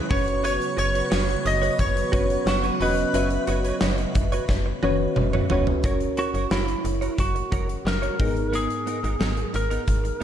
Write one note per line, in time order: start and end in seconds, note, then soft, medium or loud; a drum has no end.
0.00 5.80 C#3 medium
0.00 0.11 C#4 medium
0.00 0.12 E4 medium
0.00 0.12 G#4 medium
0.00 0.13 B4 loud
0.00 0.12 C#5 medium
0.10 0.59 F#1 loud
0.10 5.79 F#3 medium
0.10 5.79 B3 medium
0.10 1.18 C#4 medium
0.10 0.24 F#4 medium
0.10 5.79 F#4 medium
0.10 1.19 F#4 medium
0.10 5.79 B4 medium
0.10 0.25 B4 medium
0.10 1.19 B4 medium
0.10 0.44 C#5 medium
0.10 0.25 C#5 loud
0.10 1.19 C#5 medium
0.10 0.42 C#6 medium
0.10 kick loud
0.10 open hi-hat medium
0.27 muted clean electric guitar stroke medium
0.27 closed hi-hat medium
0.44 0.58 F#4 medium
0.44 0.59 B4 medium
0.44 0.78 C#5 loud
0.44 0.59 C#5 medium
0.44 0.76 C#6 medium
0.44 closed hi-hat medium
0.44 cowbell medium
0.60 muted clean electric guitar stroke soft
0.60 closed hi-hat soft
0.77 1.02 F#1 medium
0.77 0.89 F#4 medium
0.77 0.89 B4 medium
0.77 0.89 C#5 medium
0.77 1.47 C#5 loud
0.77 1.42 C#6 medium
0.77 closed hi-hat medium
0.94 1.06 F#4 medium
0.94 1.06 B4 medium
0.94 1.05 C#5 medium
0.94 closed hi-hat medium
1.10 1.36 F#1 loud
1.10 1.25 F#4 medium
1.10 1.26 B4 medium
1.10 1.26 C#5 medium
1.10 snare loud
1.10 tambourine medium
1.10 cowbell medium
1.28 muted clean electric guitar stroke medium
1.28 closed hi-hat soft
1.45 1.70 F#1 loud
1.45 1.80 D#5 medium
1.45 1.77 D#6 medium
1.45 muted clean electric guitar stroke soft
1.45 closed hi-hat medium
1.62 1.74 F#4 medium
1.62 1.73 B4 medium
1.62 1.73 C#5 medium
1.62 closed hi-hat medium
1.79 2.03 F#1 loud
1.79 2.49 C#5 loud
1.79 2.43 C#6 medium
1.79 muted clean electric guitar stroke soft
1.79 kick medium
1.79 closed hi-hat medium
1.79 cowbell medium
1.96 muted clean electric guitar stroke soft
1.96 closed hi-hat medium
2.12 2.37 F#1 loud
2.12 2.56 C#4 medium
2.12 2.27 F#4 medium
2.12 2.56 F#4 medium
2.12 2.27 B4 loud
2.12 2.56 B4 medium
2.12 2.28 C#5 loud
2.12 2.56 C#5 medium
2.12 kick loud
2.12 closed hi-hat medium
2.30 closed hi-hat soft
2.46 2.71 F#1 loud
2.46 2.82 F#4 medium
2.46 2.78 F#5 medium
2.46 muted clean electric guitar stroke soft
2.46 snare loud
2.46 tambourine medium
2.46 cowbell medium
2.63 2.75 F#4 soft
2.63 2.75 B4 medium
2.63 2.75 C#5 medium
2.63 closed hi-hat soft
2.80 3.05 E1 medium
2.80 3.02 C#4 medium
2.80 2.95 F#4 medium
2.80 3.02 F#4 medium
2.80 2.95 B4 medium
2.80 3.02 B4 medium
2.80 5.47 B4 medium
2.80 2.95 C#5 medium
2.80 3.03 D#5 medium
2.80 5.46 B5 medium
2.80 open hi-hat medium
2.97 muted clean electric guitar stroke medium
2.97 closed hi-hat medium
3.14 3.38 F#1 loud
3.14 4.00 C#4 medium
3.14 3.28 F#4 medium
3.14 4.00 F#4 medium
3.14 4.00 B4 medium
3.14 3.29 B4 medium
3.14 3.29 C#5 medium
3.14 4.01 E5 medium
3.14 closed hi-hat medium
3.14 cowbell medium
3.30 closed hi-hat medium
3.47 3.72 F#1 medium
3.47 3.59 F#4 medium
3.47 3.59 B4 medium
3.47 3.60 C#5 medium
3.47 closed hi-hat medium
3.64 3.76 F#4 medium
3.64 3.76 B4 medium
3.64 3.76 C#5 medium
3.64 closed hi-hat medium
3.81 4.06 F#1 loud
3.81 3.95 F#4 medium
3.81 3.96 B4 medium
3.81 3.96 C#5 medium
3.81 snare loud
3.81 tambourine medium
3.81 cowbell medium
3.98 muted clean electric guitar stroke soft
3.98 closed hi-hat soft
4.15 4.39 F#1 loud
4.15 muted clean electric guitar stroke soft
4.15 kick medium
4.15 closed hi-hat medium
4.32 4.44 F#4 soft
4.32 4.44 B4 medium
4.32 4.43 C#5 medium
4.32 closed hi-hat medium
4.48 4.73 F#1 loud
4.48 muted clean electric guitar stroke soft
4.48 kick medium
4.48 snare medium
4.48 cowbell medium
4.66 muted clean electric guitar stroke soft
4.83 5.07 F#1 loud
4.83 5.26 C#4 medium
4.83 4.97 F#4 medium
4.83 5.26 F#4 medium
4.83 4.97 B4 medium
4.83 5.26 B4 medium
4.83 5.26 C#5 loud
4.83 4.98 C#5 medium
4.83 high tom medium
5.00 muted clean electric guitar stroke soft
5.16 5.41 F#1 loud
5.16 muted clean electric guitar stroke soft
5.16 mid tom medium
5.16 cowbell medium
5.33 5.45 F#4 soft
5.33 5.45 B4 medium
5.33 5.44 C#5 medium
5.33 mid tom medium
5.50 5.74 E1 loud
5.50 5.72 C#4 medium
5.50 5.64 F#4 medium
5.50 5.72 F#4 medium
5.50 5.65 B4 medium
5.50 5.72 B4 medium
5.50 5.65 C#5 medium
5.50 5.72 C#5 medium
5.50 floor tom loud
5.67 muted clean electric guitar stroke medium
5.67 floor tom medium
5.84 6.08 F#1 loud
5.84 6.70 C#4 medium
5.84 5.98 F#4 medium
5.84 6.70 F#4 medium
5.84 6.70 A#4 medium
5.84 5.98 A#4 medium
5.84 6.70 C#5 medium
5.84 5.99 C#5 medium
5.84 kick loud
5.84 closed hi-hat medium
6.00 muted clean electric guitar stroke soft
6.00 closed hi-hat soft
6.17 6.29 F#4 medium
6.17 6.51 F#4 medium
6.17 6.29 A#4 medium
6.17 6.29 C#5 medium
6.17 closed hi-hat medium
6.34 6.46 F#1 medium
6.34 6.46 F#4 medium
6.34 6.46 A#4 medium
6.34 6.45 C#5 medium
6.34 closed hi-hat medium
6.51 6.75 F#1 medium
6.51 7.20 E4 medium
6.51 6.65 F#4 medium
6.51 6.66 A#4 medium
6.51 6.66 C#5 medium
6.51 snare loud
6.68 muted clean electric guitar stroke soft
6.68 closed hi-hat soft
6.85 7.09 F#1 medium
6.85 muted clean electric guitar stroke soft
6.85 closed hi-hat medium
7.01 7.13 F#4 soft
7.01 7.13 A#4 soft
7.01 7.13 C#5 medium
7.01 closed hi-hat medium
7.18 7.43 F#1 loud
7.18 7.89 F#4 medium
7.18 muted clean electric guitar stroke soft
7.18 kick medium
7.18 closed hi-hat medium
7.35 muted clean electric guitar stroke soft
7.35 closed hi-hat medium
7.52 7.77 F#1 medium
7.52 7.66 F#4 medium
7.52 7.67 A#4 medium
7.52 7.67 C#5 loud
7.52 kick medium
7.52 closed hi-hat medium
7.69 muted clean electric guitar stroke soft
7.69 closed hi-hat soft
7.85 8.10 F#1 medium
7.85 8.55 A#4 loud
7.85 muted clean electric guitar stroke soft
7.85 snare loud
8.02 8.14 F#4 medium
8.02 8.14 A#4 medium
8.02 8.14 C#5 medium
8.02 closed hi-hat soft
8.19 8.68 G#1 medium
8.19 9.17 G#2 medium
8.19 8.34 B3 medium
8.19 9.28 B3 medium
8.19 8.34 D#4 medium
8.19 9.28 D#4 medium
8.19 9.28 G#4 medium
8.19 8.34 A#4 medium
8.19 9.28 A#4 medium
8.19 kick loud
8.19 open hi-hat medium
8.36 muted clean electric guitar stroke soft
8.36 closed hi-hat soft
8.52 8.67 B3 medium
8.52 8.67 D#4 medium
8.52 9.51 G#4 medium
8.52 8.68 A#4 medium
8.52 closed hi-hat medium
8.70 muted clean electric guitar stroke soft
8.70 closed hi-hat soft
8.87 8.98 B3 medium
8.87 8.98 D#4 medium
8.87 8.99 A#4 medium
8.87 closed hi-hat medium
9.03 9.16 G#1 medium
9.03 9.15 B3 soft
9.03 9.15 D#4 medium
9.03 9.15 A#4 medium
9.03 closed hi-hat soft
9.19 9.45 G#1 medium
9.19 9.34 B3 medium
9.19 9.35 D#4 medium
9.19 9.35 A#4 medium
9.19 snare loud
9.37 muted clean electric guitar stroke soft
9.37 closed hi-hat soft
9.53 9.79 G#1 loud
9.53 10.23 A#4 medium
9.53 muted clean electric guitar stroke soft
9.53 closed hi-hat medium
9.70 9.83 B3 medium
9.70 9.82 D#4 medium
9.70 9.82 A#4 medium
9.70 closed hi-hat medium
9.87 10.12 G#1 loud
9.87 muted clean electric guitar stroke soft
9.87 kick medium
9.87 closed hi-hat medium
10.04 muted clean electric guitar stroke soft
10.04 closed hi-hat medium